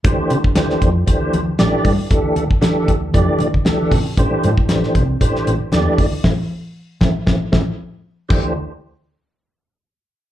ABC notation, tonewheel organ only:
X:1
M:4/4
L:1/8
Q:"Swing 16ths" 1/4=116
K:Aphr
V:1 name="Tonewheel organ"
[E,A,DGc] z [E,A,DGc] z [E,A,DGc] z [E,A,DGd] z | [E,A,DGA] z [E,A,DGA] z [E,A,DGd] z [E,A,DGA] z | [E,A,DGc] z [E,A,DGc] z [E,A,DGc] z [E,A,DGd] z | [A,CE] z2 [A,CE] [A,CE] [A,CE] z2 |
[E,A,DGc] z6 z |]